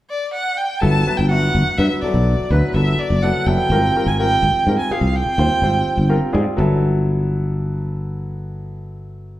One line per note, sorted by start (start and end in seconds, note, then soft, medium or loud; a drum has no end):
0.09 0.32 D5 medium
0.34 0.59 F#5 loud
0.57 0.82 G5 medium
0.80 1.02 G1 medium
0.80 1.02 F#3 medium
0.80 1.02 B3 medium
0.80 1.02 E4 medium
0.80 1.02 A4 medium
0.80 1.19 A5 loud
1.07 1.27 F#3 medium
1.07 1.27 B3 medium
1.07 1.27 E4 medium
1.07 1.27 B4 medium
1.17 1.48 G1 medium
1.17 1.28 G5 medium
1.29 1.71 F#3 medium
1.29 1.71 B3 medium
1.29 1.71 E4 medium
1.29 1.71 F#4 medium
1.29 1.79 F#5 loud
1.55 1.64 G1 medium
1.67 muted fretless electric bass stroke soft
1.77 1.88 G2 medium
1.77 1.99 F#3 medium
1.77 1.99 B3 medium
1.77 1.99 E4 medium
1.77 1.99 B4 medium
1.77 2.00 E5 medium
2.01 2.44 F#3 medium
2.01 2.44 B3 medium
2.01 2.44 E4 medium
2.01 2.44 A4 medium
2.01 2.52 D5 medium
2.01 muted fretless electric bass stroke soft
2.14 2.34 B1 medium
2.50 2.60 D2 medium
2.50 2.72 F#3 medium
2.50 2.72 B3 medium
2.50 2.72 E4 medium
2.50 2.75 B4 medium
2.50 2.72 B4 medium
2.74 2.94 G1 medium
2.74 3.16 F#3 medium
2.74 3.16 B3 medium
2.74 3.16 E4 medium
2.74 3.16 A4 medium
2.74 3.00 E5 medium
2.99 3.24 D5 medium
3.10 3.30 F#1 medium
3.22 3.43 F#3 medium
3.22 3.44 B3 medium
3.22 3.43 E4 medium
3.22 3.43 A4 medium
3.22 3.48 F#5 medium
3.46 3.56 F#1 medium
3.46 3.71 F#3 medium
3.46 3.71 B3 medium
3.46 3.71 E4 medium
3.46 3.71 A4 medium
3.46 4.09 G5 medium
3.70 3.90 G#1 medium
3.70 3.91 G3 medium
3.70 3.92 C4 medium
3.70 3.92 F4 medium
3.70 3.92 A#4 medium
3.96 4.15 G3 medium
3.96 4.16 C4 medium
3.96 4.16 F4 medium
3.96 4.16 A#4 medium
4.06 4.36 G#1 medium
4.06 4.18 G#5 medium
4.19 4.59 G3 medium
4.19 4.60 C4 medium
4.19 4.60 F4 medium
4.19 4.60 A#4 medium
4.19 4.75 G5 medium
4.43 4.53 G#1 medium
4.55 muted fretless electric bass stroke soft
4.67 4.77 G#2 medium
4.67 4.88 G3 medium
4.67 4.88 C4 medium
4.67 4.88 F4 medium
4.67 4.88 A#4 medium
4.79 4.93 G#5 medium
4.91 5.31 C4 soft
4.91 5.31 F4 medium
4.91 5.31 G4 medium
4.91 5.31 G#4 medium
4.91 5.17 F5 medium
4.91 muted fretless electric bass stroke soft
5.01 5.21 C2 medium
5.16 6.11 G5 medium
5.26 muted fretless electric bass stroke soft
5.38 5.48 D#2 loud
5.38 5.59 G3 medium
5.38 5.59 C4 medium
5.38 5.59 F4 medium
5.38 5.59 C5 medium
5.62 5.82 G#1 medium
5.62 6.03 G3 medium
5.62 6.03 C4 medium
5.62 6.03 F4 medium
5.62 6.03 C5 medium
5.97 6.18 G1 medium
6.09 6.30 G3 medium
6.09 6.30 C4 medium
6.09 6.30 F4 medium
6.09 6.30 A#4 medium
6.09 6.32 G5 medium
6.33 6.44 G#2 medium
6.33 6.58 G3 medium
6.33 6.58 C4 medium
6.33 6.58 F4 medium
6.33 6.58 G#4 medium
6.33 6.56 D5 medium
6.57 9.40 G1 medium
6.57 9.40 F#3 medium
6.57 9.40 B3 medium
6.57 9.40 E4 medium
6.57 9.40 A4 medium